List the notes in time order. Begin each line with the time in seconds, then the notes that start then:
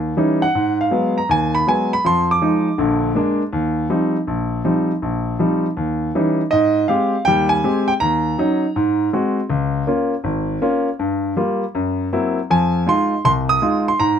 Already playing: D#2
0.17 E3 G3 C#4 D#4
0.42 F#5
0.55 G#2
0.81 F5
0.91 F#3 G#3 B3
1.18 A#5
1.29 D#2 G#5
1.55 B5
1.67 F#3 G#3 B3 G#5
1.93 B5
2.05 F2 F3 C6
2.31 D6
2.42 F3 G#3 D#4
2.78 A#1 D3
3.15 G#3 A#3 D4
3.53 D#2
3.90 F3 G3 C4 D#4
4.27 A#1
4.65 F3 G3 C4 D#4
5.02 A#1
5.39 F3 G3 C4 D#4
5.77 D#2
6.15 E3 G3 C#4 D#4
6.51 G#2 D#5
6.88 G#3 C4 G4 F5
7.25 D#2 G3 G5
7.49 G#5
7.64 G#3 C4 G4
7.88 G5
8.00 D#2 A#5
8.38 F#3 C#4 D#4
8.76 G#2
9.13 G#3 C4 F#4
9.50 C#2
9.87 A#3 C#4 F4
10.24 G#1
10.62 A#3 C#4 F4
10.99 G2
11.37 G3 A#3 F4
11.75 F#2
12.13 F#3 A#3 C4 E4
12.50 F2 F3 G#5
12.86 G#3 D#4 F4 C6
13.25 C2 C6
13.49 D#6
13.62 G#3 D#4 F4
13.88 C6
14.00 G#2 A#5